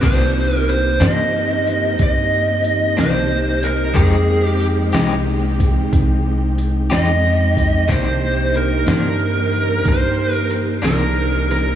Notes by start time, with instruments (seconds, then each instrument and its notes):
0.00 upright bass C2, clean electric guitar C3 D#3 A#3 D4, tonewheel organ A#3 C4 D#4 G4, kick, closed hi-hat, crash
0.05 lead electric guitar C5
0.56 lead electric guitar A#4
0.69 lead electric guitar C5, closed hi-hat
1.00 upright bass G2, clean electric guitar C3 D#3 A#3 D4, lead electric guitar D#5, snare, closed hi-hat
1.67 closed hi-hat
1.99 upright bass G2, lead electric guitar D#5, kick, closed hi-hat
2.64 closed hi-hat
2.97 upright bass C2, clean electric guitar C3 D#3 A#3 D4, lead electric guitar C5, snare, closed hi-hat
3.63 lead electric guitar A#4, closed hi-hat
3.94 upright bass F2, clean electric guitar F3 G#3 D#4 G4, tonewheel organ G#3 C4 D#4 G5, lead electric guitar G#4, kick, closed hi-hat
4.45 lead electric guitar G4
4.60 closed hi-hat
4.93 upright bass C2, clean electric guitar F3 G#3 D#4 G4, snare, closed hi-hat
5.60 kick, closed hi-hat
5.93 upright bass C2, kick, closed hi-hat
6.58 closed hi-hat
6.90 upright bass F2, clean electric guitar F3 G#3 D#4 G4, lead electric guitar D#5, snare, closed hi-hat
7.57 kick, closed hi-hat
7.88 upright bass C2, clean electric guitar C3 D#3 A#3 D4, tonewheel organ A#3 D4 D#4 G4, lead electric guitar C5, kick, closed hi-hat
8.54 lead electric guitar A#4, closed hi-hat
8.87 upright bass G2, clean electric guitar C3 D#3 A#3 D4, snare, closed hi-hat
8.91 lead electric guitar A#4
9.53 closed hi-hat
9.85 upright bass G2, kick, closed hi-hat
9.89 lead electric guitar C5
10.34 lead electric guitar A#4
10.51 closed hi-hat
10.82 upright bass C2, clean electric guitar C3 D#3 A#3 D4, lead electric guitar A#4, snare, closed hi-hat
11.51 lead electric guitar A#4, snare, closed hi-hat